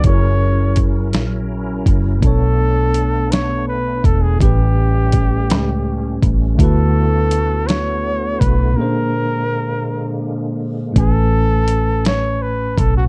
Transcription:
<<
  \new Staff \with { instrumentName = "Flugelhorn" } { \time 6/8 \key a \major \tempo 4. = 55 cis''4 r2 | a'4. cis''8 b'8 a'16 gis'16 | g'2~ g'8 r8 | a'4. cis''4 b'8 |
bes'2 r4 | a'4. cis''8 b'8 a'16 fis'16 | }
  \new Staff \with { instrumentName = "Tine electric piano" } { \time 6/8 \key a \major <fis cis' e' gis' ais'>2. | <b, b d' a' cis''>2. | <a, a cis' g' b'>2. | <d a e' fis' b'>2. |
<bes, bes cis' d' aes' c''>2. | <a, a cis' b' gis''>2. | }
  \new Staff \with { instrumentName = "Tonewheel organ" } { \time 6/8 \key a \major <cis' e' ais'>2. | <a b d'>2. | <g cis'>2. | <b fis'>2. |
<aes bes>2. | r2. | }
  \new Staff \with { instrumentName = "Tonewheel organ" } { \clef bass \time 6/8 \key a \major fis2. | r2. | r2. | d2.~ |
d2. | r2. | }
  \new Staff \with { instrumentName = "Fingered electric bass" } { \clef bass \time 6/8 \key a \major fis,,4. ais,,4 fis,,8 | b,,2~ b,,8 e,,8 | a,,4. cis,4 a,,8 | d,2~ d,8 b,,8 |
r2. | a,,2~ a,,8 b,,8 | }
  \new DrumStaff \with { instrumentName = "Drums" } \drummode { \time 6/8 <hh bd>4 <hh bd>8 <hh sn>4 <hh bd>8 | <hh bd>4 hh8 <hh sn>4 <hh bd>8 | <hh bd>4 <hh bd>8 <hh sn>4 <hh bd>8 | <hh bd>4 hh8 <hh sn>4 <hh bd>8 |
r4. r4. | <hh bd>4 hh8 <hh sn>4 <hh bd>8 | }
>>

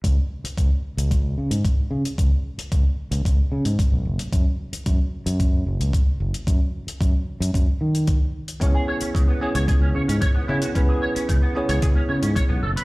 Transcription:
<<
  \new Staff \with { instrumentName = "Clean electric guitar" } { \time 4/4 \key cis \minor \tempo 4 = 112 r1 | r1 | r1 | r1 |
cis'16 gis'16 cis''16 cis'16 cis16 b16 gis'16 cis''16 gis'16 cis'16 cis''16 cis'16 cis''16 b16 e'16 fis'16 | cis'16 gis'16 cis''16 cis'16 cis16 b16 gis'16 cis''16 gis'16 cis'16 cis''16 cis'16 cis''16 b16 a'16 b'16 | }
  \new Staff \with { instrumentName = "Tine electric piano" } { \time 4/4 \key cis \minor r1 | r1 | r1 | r1 |
<b cis' e' gis' cis''>4. <b cis' e' gis' cis''>2 <b cis' e' gis' cis''>8 | <b cis' e' gis' b'>4. <b cis' e' gis' cis''>2 r8 | }
  \new Staff \with { instrumentName = "Fingered electric bass" } { \clef bass \time 4/4 \key cis \minor cis,16 r8. cis,16 r8 cis,8. cis16 gis,16 r8 cis16 r16 | cis,16 r8. cis,16 r8 cis,16 r8 cis16 gis,16 r16 b,,16 fis,,16 r16 | fis,16 r8. fis,16 r8 fis,8. fis,,16 cis,16 r8 fis,,16 r16 | fis,16 r8. fis,16 r8 fis,16 fis,16 r16 dis8. r8. |
cis,16 r8. cis,16 r8 cis,8. cis16 gis,16 r8 cis16 r16 | cis,16 r8. cis,16 r8 cis,16 cis,16 r16 cis16 gis,16 r16 b,,16 fis,,16 r16 | }
  \new DrumStaff \with { instrumentName = "Drums" } \drummode { \time 4/4 <hh bd>8. hh16 <hh bd>8. hh16 <hh bd>8. hh16 <hh bd>8. hh16 | <hh bd>8. hh16 <hh bd>8. hh16 <hh bd>8. hh16 <hh bd>8. hh16 | <hh bd>8. hh16 <hh bd>8. hh16 <hh bd>8. hh16 <hh bd>8. hh16 | <hh bd>8. hh16 <hh bd>8. hh16 <hh bd>8. hh16 <hh bd>8. hh16 |
<hh bd>8. hh16 <hh bd>8. hh16 <hh bd>8. hh16 <hh bd>8. hh16 | <hh bd>8. hh16 <hh bd>8. hh16 <hh bd>8. hh16 <hh bd>8. hh16 | }
>>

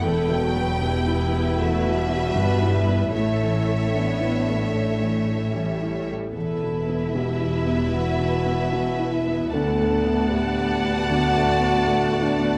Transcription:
<<
  \new Staff \with { instrumentName = "Violin section" } { \time 4/4 \key e \dorian \tempo 4 = 76 << { g''2 e''2 | e''2.~ e''8. r16 | e''1 | a''1 | } \\ { b'1 | cis''2.~ cis''8. r16 | b'1 | d''1 | } >> }
  \new Staff \with { instrumentName = "French horn" } { \time 4/4 \key e \dorian a'8 r8 g'4 fis'4. e'8 | e'4 d'2 r4 | a'4 g'4 fis'4. e'8 | a'4 g'4 fis'4. d'8 | }
  \new Staff \with { instrumentName = "Viola section" } { \time 4/4 \key e \dorian << { e'8 fis8 e'2 b'8 b'8 | a'4 b4 a4 g4 | e'1 | fis''1 | } \\ { b2 a8 g4. | a4 r2. | b1~ | b1 | } >> }
  \new Staff \with { instrumentName = "Grand piano" } { \clef bass \time 4/4 \key e \dorian \tuplet 3/2 { e,8 b,8 b8 b,8 e'8 b8 e,8 b,8 b8 b,8 e'8 b8 } | \tuplet 3/2 { a,8 e8 a8 e8 e'8 a8 a,8 e8 a8 e8 e'8 a8 } | \tuplet 3/2 { e,8 b,8 b8 b,8 e'8 b8 e,8 b,8 b8 b,8 e'8 b8 } | \tuplet 3/2 { d,8 a,8 b8 a,8 fis''8 b8 d,8 a,8 b8 a,8 fis'8 b8 } | }
  \new Staff \with { instrumentName = "Cello section" } { \clef bass \time 4/4 \key e \dorian e,2. g,4 | a,2.~ a,8. r16 | e,1 | d,1 | }
  \new Staff \with { instrumentName = "Double bass section" } { \clef bass \time 4/4 \key e \dorian e,,2. g,,4 | a,,2.~ a,,8. r16 | e,,1 | d,1 | }
>>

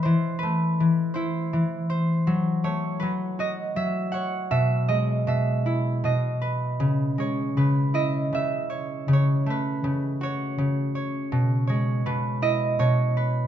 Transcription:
<<
  \new Staff \with { instrumentName = "Harp" } { \time 3/4 \key e \major \tempo 4 = 80 c''8 b'4 c''4 r8 | r8 cis''8 b'8 dis''8 e''8 fis''8 | e''8 dis''8 e''4 dis''8. r16 | r8 cis''8 b'8 dis''8 e''4 |
cis''8 b'4 cis''4 r8 | r8 cis''8 b'8 dis''8 cis''4 | }
  \new Staff \with { instrumentName = "Harp" } { \clef bass \time 3/4 \key e \major e8 a8 e8 e'8 e8 c''8 | fis8 a8 fis8 fis'8 fis8 cis''8 | b,8 gis8 b,8 e'8 b,8 b'8 | cis8 gis8 cis8 e'8 cis8 cis''8 |
cis8 a8 cis8 fis'8 cis8 cis''8 | b,8 gis8 b,8 e'8 b,8 b'8 | }
>>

